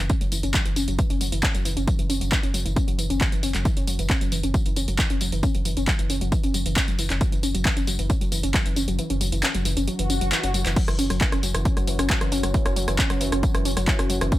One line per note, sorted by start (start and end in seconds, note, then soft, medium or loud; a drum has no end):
0.10 0.13 C#4 medium
0.10 kick loud
0.10 closed hi-hat medium
0.10 tambourine soft
0.21 0.31 F#1 medium
0.21 0.26 F#3 medium
0.21 closed hi-hat medium
0.21 tambourine soft
0.32 0.43 F#1 loud
0.32 0.35 E3 medium
0.32 open hi-hat loud
0.32 tambourine medium
0.43 0.54 F#1 medium
0.43 0.46 C#4 medium
0.43 closed hi-hat medium
0.43 tambourine soft
0.54 0.59 F#3 medium
0.54 kick loud
0.54 clap loud
0.54 closed hi-hat medium
0.54 tambourine soft
0.66 0.76 F#1 medium
0.66 0.68 E3 medium
0.66 closed hi-hat medium
0.66 tambourine soft
0.76 0.87 F#1 loud
0.76 0.79 C#4 medium
0.76 open hi-hat loud
0.76 tambourine medium
0.88 0.98 F#1 medium
0.88 0.93 F#3 medium
0.88 closed hi-hat medium
0.88 tambourine soft
0.99 1.02 E3 medium
0.99 kick loud
0.99 closed hi-hat medium
0.99 tambourine soft
1.10 1.20 F#1 medium
1.10 1.13 C#4 medium
1.10 closed hi-hat medium
1.10 tambourine soft
1.21 1.32 F#1 loud
1.21 1.26 F#3 medium
1.21 open hi-hat loud
1.21 tambourine medium
1.32 1.43 F#1 medium
1.32 1.35 E3 medium
1.32 closed hi-hat medium
1.32 tambourine soft
1.43 1.46 C#4 medium
1.43 kick loud
1.43 clap loud
1.43 closed hi-hat medium
1.43 tambourine soft
1.55 1.65 F#1 medium
1.55 1.59 F#3 medium
1.55 closed hi-hat medium
1.55 tambourine soft
1.65 1.76 F#1 loud
1.65 1.68 E3 medium
1.65 open hi-hat loud
1.65 tambourine medium
1.77 1.87 F#1 medium
1.77 1.80 C#4 medium
1.77 closed hi-hat medium
1.77 tambourine soft
1.88 1.92 F#3 medium
1.88 kick loud
1.88 closed hi-hat medium
1.88 tambourine soft
1.99 2.09 F#1 medium
1.99 2.02 E3 medium
1.99 closed hi-hat medium
1.99 tambourine soft
2.10 2.21 F#1 loud
2.10 2.13 C#4 medium
2.10 open hi-hat loud
2.10 tambourine medium
2.21 2.32 F#1 medium
2.21 2.26 F#3 medium
2.21 closed hi-hat medium
2.21 tambourine soft
2.32 2.35 E3 medium
2.32 kick loud
2.32 clap loud
2.32 closed hi-hat medium
2.32 tambourine soft
2.43 2.54 F#1 medium
2.43 2.46 C#4 medium
2.43 closed hi-hat medium
2.43 tambourine soft
2.54 2.65 F#1 loud
2.54 2.59 F#3 medium
2.54 open hi-hat loud
2.54 tambourine medium
2.65 2.76 F#1 medium
2.65 2.68 E3 medium
2.65 closed hi-hat medium
2.65 tambourine soft
2.76 2.79 C#4 medium
2.76 kick loud
2.76 closed hi-hat medium
2.76 tambourine soft
2.88 2.98 F#1 medium
2.88 2.92 F#3 medium
2.88 closed hi-hat medium
2.88 tambourine soft
2.98 3.09 F#1 loud
2.98 3.02 E3 medium
2.98 open hi-hat loud
2.98 tambourine medium
3.10 3.21 F#1 medium
3.10 3.13 C#4 medium
3.10 closed hi-hat medium
3.10 tambourine soft
3.21 3.26 F#3 medium
3.21 kick loud
3.21 clap loud
3.21 closed hi-hat medium
3.21 tambourine soft
3.32 3.42 F#1 medium
3.32 3.35 E3 medium
3.32 closed hi-hat medium
3.32 tambourine soft
3.43 3.54 F#1 loud
3.43 3.46 C#4 medium
3.43 open hi-hat loud
3.43 tambourine medium
3.55 3.65 F#1 medium
3.55 3.59 F#3 medium
3.55 clap medium
3.55 closed hi-hat medium
3.55 tambourine soft
3.65 3.68 E3 medium
3.65 kick loud
3.65 closed hi-hat medium
3.65 tambourine soft
3.77 3.87 F#1 medium
3.77 3.80 C#4 medium
3.77 closed hi-hat medium
3.77 tambourine soft
3.87 3.98 F#1 loud
3.87 3.92 F#3 medium
3.87 open hi-hat loud
3.87 tambourine medium
3.99 4.10 F#1 medium
3.99 4.02 E3 medium
3.99 closed hi-hat medium
3.99 tambourine soft
4.10 4.13 C#4 medium
4.10 kick loud
4.10 clap loud
4.10 closed hi-hat medium
4.10 tambourine soft
4.21 4.31 F#1 medium
4.21 4.26 F#3 medium
4.21 closed hi-hat medium
4.21 tambourine soft
4.32 4.43 F#1 loud
4.32 4.35 E3 medium
4.32 open hi-hat medium
4.32 tambourine medium
4.43 4.54 F#1 medium
4.43 4.46 C#4 medium
4.43 closed hi-hat medium
4.43 tambourine soft
4.54 4.59 F#3 medium
4.54 kick loud
4.54 closed hi-hat medium
4.54 tambourine soft
4.66 4.76 F#1 medium
4.66 4.68 E3 medium
4.66 closed hi-hat medium
4.66 tambourine soft
4.76 4.87 F#1 loud
4.76 4.79 C#4 medium
4.76 open hi-hat loud
4.76 tambourine medium
4.88 4.98 F#1 medium
4.88 4.93 F#3 medium
4.88 closed hi-hat medium
4.88 tambourine soft
4.99 5.02 E3 medium
4.99 kick loud
4.99 clap loud
4.99 closed hi-hat medium
4.99 tambourine soft
5.10 5.20 F#1 medium
5.10 5.13 C#4 medium
5.10 closed hi-hat medium
5.10 tambourine soft
5.21 5.32 F#1 loud
5.21 5.26 F#3 medium
5.21 open hi-hat medium
5.21 tambourine medium
5.32 5.43 F#1 medium
5.32 5.35 E3 medium
5.32 closed hi-hat medium
5.32 tambourine soft
5.43 5.46 C#4 medium
5.43 kick loud
5.43 closed hi-hat medium
5.43 tambourine soft
5.55 5.65 F#1 medium
5.55 5.59 F#3 medium
5.55 closed hi-hat medium
5.55 tambourine soft
5.65 5.76 F#1 loud
5.65 5.68 E3 medium
5.65 open hi-hat loud
5.65 tambourine medium
5.77 5.87 F#1 medium
5.77 5.80 C#4 medium
5.77 closed hi-hat medium
5.77 tambourine soft
5.88 5.93 F#3 medium
5.88 kick loud
5.88 clap loud
5.88 closed hi-hat medium
5.88 tambourine soft
5.99 6.09 F#1 medium
5.99 6.02 E3 medium
5.99 closed hi-hat medium
5.99 tambourine soft
6.10 6.21 F#1 loud
6.10 6.13 C#4 medium
6.10 open hi-hat medium
6.10 tambourine medium
6.21 6.32 F#1 medium
6.21 6.26 F#3 medium
6.21 closed hi-hat medium
6.21 tambourine soft
6.32 6.35 E3 medium
6.32 kick loud
6.32 closed hi-hat medium
6.32 tambourine soft
6.43 6.54 F#1 medium
6.43 6.46 C#4 medium
6.43 closed hi-hat medium
6.43 tambourine soft
6.54 6.65 F#1 loud
6.54 6.59 F#3 medium
6.54 open hi-hat loud
6.54 tambourine medium
6.66 6.76 F#1 medium
6.66 6.68 E3 medium
6.66 closed hi-hat medium
6.66 tambourine soft
6.76 6.79 C#4 medium
6.76 kick loud
6.76 clap loud
6.76 closed hi-hat medium
6.76 tambourine soft
6.88 6.98 F#1 medium
6.88 6.93 F#3 medium
6.88 closed hi-hat medium
6.88 tambourine soft
6.99 7.10 F#1 loud
6.99 7.02 E3 medium
6.99 open hi-hat medium
6.99 tambourine medium
7.10 7.21 F#1 medium
7.10 7.13 C#4 medium
7.10 clap medium
7.10 closed hi-hat medium
7.10 tambourine soft
7.21 7.26 F#3 medium
7.21 kick loud
7.21 closed hi-hat medium
7.21 tambourine soft
7.32 7.43 F#1 medium
7.32 7.35 E3 medium
7.32 closed hi-hat medium
7.32 tambourine soft
7.43 7.54 F#1 loud
7.43 7.46 C#4 medium
7.43 open hi-hat loud
7.43 tambourine medium
7.55 7.65 F#1 medium
7.55 7.59 F#3 medium
7.55 closed hi-hat medium
7.55 tambourine soft
7.65 7.68 E3 medium
7.65 kick loud
7.65 clap loud
7.65 closed hi-hat medium
7.65 tambourine soft
7.77 7.87 F#1 medium
7.77 7.80 C#4 medium
7.77 closed hi-hat medium
7.77 tambourine soft
7.87 7.98 F#1 loud
7.87 7.92 F#3 medium
7.87 open hi-hat medium
7.87 tambourine medium
7.99 8.09 F#1 medium
7.99 8.02 E3 medium
7.99 closed hi-hat medium
7.99 tambourine soft
8.10 8.13 C#4 medium
8.10 kick loud
8.10 closed hi-hat medium
8.10 tambourine soft
8.21 8.31 F#1 medium
8.21 8.26 F#3 medium
8.21 closed hi-hat medium
8.21 tambourine soft
8.32 8.43 F#1 loud
8.32 8.35 E3 medium
8.32 open hi-hat loud
8.32 tambourine medium
8.43 8.54 F#1 medium
8.43 8.46 C#4 medium
8.43 closed hi-hat medium
8.43 tambourine soft
8.54 8.59 F#3 medium
8.54 kick loud
8.54 clap loud
8.54 closed hi-hat medium
8.54 tambourine soft
8.66 8.76 F#1 medium
8.66 8.68 E3 medium
8.66 closed hi-hat medium
8.66 tambourine soft
8.76 8.87 F#1 loud
8.76 8.79 C#4 medium
8.76 open hi-hat medium
8.76 tambourine medium
8.88 8.98 F#1 medium
8.88 8.93 F#3 medium
8.88 closed hi-hat medium
8.88 tambourine soft
8.99 9.02 E3 medium
8.99 closed hi-hat medium
8.99 tambourine soft
9.10 9.20 F#1 medium
9.10 9.13 C#4 medium
9.10 closed hi-hat medium
9.10 tambourine soft
9.21 9.32 F#1 loud
9.21 9.26 F#3 medium
9.21 open hi-hat loud
9.21 tambourine medium
9.32 9.43 F#1 medium
9.32 9.35 E3 medium
9.32 closed hi-hat medium
9.32 tambourine soft
9.43 9.46 C#4 medium
9.43 clap loud
9.43 closed hi-hat medium
9.43 tambourine soft
9.54 9.65 F#1 medium
9.54 9.59 F#3 medium
9.54 closed hi-hat medium
9.54 tambourine soft
9.65 9.76 F#1 loud
9.65 9.68 E3 medium
9.65 open hi-hat medium
9.65 tambourine medium
9.77 9.87 F#1 medium
9.77 9.80 C#4 medium
9.77 closed hi-hat medium
9.77 tambourine soft
9.87 9.93 F#3 medium
9.87 closed hi-hat medium
9.87 tambourine soft
9.87 swell medium
9.99 10.09 F#1 medium
9.99 10.02 E3 medium
9.99 closed hi-hat medium
9.99 tambourine soft
10.10 10.21 F#1 loud
10.10 10.13 C#4 medium
10.10 open hi-hat loud
10.10 tambourine medium
10.21 10.32 F#1 medium
10.21 10.26 F#3 medium
10.21 closed hi-hat medium
10.21 tambourine soft
10.32 10.35 E3 medium
10.32 clap loud
10.32 closed hi-hat medium
10.32 tambourine soft
10.43 10.54 F#1 medium
10.43 10.46 C#4 medium
10.43 closed hi-hat medium
10.43 tambourine soft
10.54 10.65 F#1 loud
10.54 10.59 F#3 medium
10.54 open hi-hat medium
10.54 tambourine medium
10.66 10.76 F#1 medium
10.66 10.68 E3 medium
10.66 clap medium
10.66 closed hi-hat medium
10.66 tambourine soft
10.76 10.81 F#3 medium
10.76 14.39 F#3 medium
10.76 14.39 C#4 medium
10.76 kick loud
10.76 closed hi-hat medium
10.76 crash loud
10.76 tambourine soft
10.88 10.98 F#1 medium
10.88 10.91 E3 medium
10.88 cross-stick medium
10.88 closed hi-hat medium
10.88 tambourine soft
10.99 11.09 F#1 loud
10.99 11.02 C#4 medium
10.99 open hi-hat loud
10.99 tambourine medium
11.10 11.21 F#1 medium
11.10 11.15 F#3 medium
11.10 cross-stick medium
11.10 closed hi-hat medium
11.10 tambourine soft
11.21 11.24 E3 medium
11.21 kick loud
11.21 clap loud
11.21 closed hi-hat medium
11.21 tambourine soft
11.32 11.42 F#1 medium
11.32 11.35 C#4 medium
11.32 cross-stick medium
11.32 closed hi-hat medium
11.32 tambourine soft
11.43 11.54 F#1 loud
11.43 11.48 F#3 medium
11.43 open hi-hat loud
11.43 tambourine medium
11.54 11.65 F#1 medium
11.54 11.57 E3 medium
11.54 cross-stick medium
11.54 closed hi-hat medium
11.54 tambourine soft
11.65 11.68 C#4 medium
11.65 kick loud
11.65 closed hi-hat medium
11.65 tambourine soft
11.77 11.87 F#1 medium
11.77 11.81 F#3 medium
11.77 cross-stick medium
11.77 closed hi-hat medium
11.77 tambourine soft
11.87 11.98 F#1 loud
11.87 11.91 E3 medium
11.87 open hi-hat loud
11.87 tambourine medium
11.99 12.09 F#1 medium
11.99 12.02 C#4 medium
11.99 cross-stick medium
11.99 closed hi-hat medium
11.99 tambourine soft
12.10 12.15 F#3 medium
12.10 kick loud
12.10 clap loud
12.10 closed hi-hat medium
12.10 tambourine soft
12.21 12.31 F#1 medium
12.21 12.24 E3 medium
12.21 cross-stick medium
12.21 closed hi-hat medium
12.21 tambourine soft
12.32 12.43 F#1 loud
12.32 12.35 C#4 medium
12.32 open hi-hat medium
12.32 tambourine medium
12.43 12.54 F#1 medium
12.43 12.48 F#3 medium
12.43 cross-stick medium
12.43 closed hi-hat medium
12.43 tambourine soft
12.54 12.57 E3 medium
12.54 kick loud
12.54 closed hi-hat medium
12.54 tambourine soft
12.66 12.76 F#1 medium
12.66 12.68 C#4 medium
12.66 cross-stick loud
12.66 closed hi-hat medium
12.66 tambourine soft
12.76 12.87 F#1 loud
12.76 12.81 F#3 medium
12.76 open hi-hat loud
12.76 tambourine medium
12.88 12.98 F#1 medium
12.88 12.91 E3 medium
12.88 cross-stick medium
12.88 closed hi-hat medium
12.88 tambourine soft
12.99 13.02 C#4 medium
12.99 kick loud
12.99 clap loud
12.99 closed hi-hat medium
12.99 tambourine soft
13.10 13.20 F#1 medium
13.10 13.15 F#3 medium
13.10 cross-stick medium
13.10 closed hi-hat medium
13.10 tambourine soft
13.21 13.32 F#1 loud
13.21 13.24 E3 medium
13.21 open hi-hat loud
13.21 tambourine medium
13.32 13.43 F#1 medium
13.32 13.35 C#4 medium
13.32 cross-stick medium
13.32 closed hi-hat medium
13.32 tambourine soft
13.43 13.48 F#3 medium
13.43 kick loud
13.43 closed hi-hat medium
13.43 tambourine soft
13.54 13.65 F#1 medium
13.54 13.57 E3 medium
13.54 cross-stick medium
13.54 closed hi-hat medium
13.54 tambourine soft
13.65 13.76 F#1 loud
13.65 13.68 C#4 medium
13.65 open hi-hat loud
13.65 tambourine medium
13.77 13.87 F#1 medium
13.77 13.81 F#3 medium
13.77 cross-stick medium
13.77 closed hi-hat medium
13.77 tambourine soft
13.87 13.90 E3 medium
13.87 kick loud
13.87 clap loud
13.87 closed hi-hat medium
13.87 tambourine soft
13.99 14.09 F#1 medium
13.99 14.02 C#4 medium
13.99 cross-stick medium
13.99 closed hi-hat medium
13.99 tambourine soft
14.10 14.21 F#1 loud
14.10 14.15 F#3 medium
14.10 open hi-hat loud
14.10 tambourine medium
14.21 14.32 F#1 medium
14.21 14.24 E3 medium
14.21 cross-stick loud
14.21 closed hi-hat medium
14.21 tambourine soft
14.32 14.35 C#4 medium
14.32 kick loud
14.32 closed hi-hat medium
14.32 tambourine soft